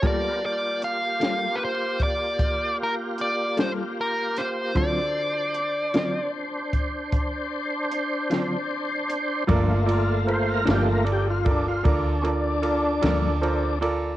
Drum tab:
RD |------------|------------|xxxxxxxxxxxx|
HH |x-xx-xx-xx-x|x-xx-xx-xx-x|------------|
SD |---o-----o-o|---o-----o--|---o-----o--|
BD |o----oo-----|o----oo-----|o----oo-----|